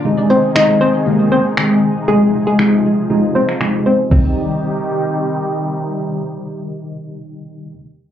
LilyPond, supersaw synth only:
\new Staff \with { instrumentName = "Supersaw synth" } { \clef bass \time 4/4 \key c \minor \tempo 4 = 118 << { <c aes ees' aes'>1~ | <c aes ees' aes'>1 | <c ees g ees' g'>1~ | <c ees g ees' g'>1 | } \\ { ees1 | f1 | r1 | r1 | } >> }